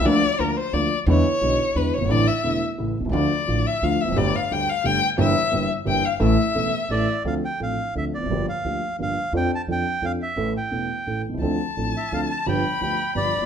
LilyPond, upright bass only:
\new Staff \with { instrumentName = "Upright bass" } { \clef bass \time 3/4 \key d \minor \tempo 4 = 174 d,16. r8 r32 d,16. r8 r32 d,16. r8 r32 | e,16. r8 r32 b,,16. r8 r32 e,16. r16 fis,,32 g,,32 gis,,32 | a,,16. r8 r32 e,,16. r8 r32 a,,16. r16 b,,32 c,32 cis,32 | d,16. r8 r32 a,,16. r8 r32 d,16. r16 e,,32 f,,32 fis,,32 |
g,,16. r8 r32 d,16. r8 r32 g,,16. r8 r32 | g,,16. r8 r32 g,,16. r8 r32 g,,16. r8 r32 | a,,16. r8 r32 e,,16. r8 r32 a,,16. r8 r32 | d,16. r8 r32 a,,16. r8 r32 d,16. r16 e,,32 f,,32 fis,,32 |
g,,16. r8 r32 d,16. r8 r32 g,,16. r8 r32 | f,16. r8 r32 f,16. r8 r32 f,16. r8 r32 | a,,16. r8 r32 e,,16. r8 r32 a,,16. r16 b,,32 c,32 cis,32 | d,16. r8 r32 a,,16. r8 r32 d,16. r8 r32 |
g,,16. r8 r32 d,16. r8 r32 g,,16. r16 fis,,32 g,,32 r32 | }